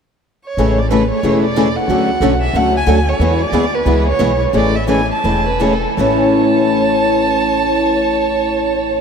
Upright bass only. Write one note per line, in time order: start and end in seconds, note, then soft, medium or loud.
0.57 1.10 A1 medium
1.23 1.76 E1 medium
1.88 2.15 D2 medium
2.20 2.49 B1 medium
2.53 2.82 C#2 medium
2.87 3.15 D2 medium
3.19 3.46 E2 medium
3.52 3.80 D2 medium
3.85 4.14 C#2 medium
4.19 4.48 B1 medium
4.53 5.10 A1 medium
5.24 5.84 E1 medium
5.98 9.01 A1 medium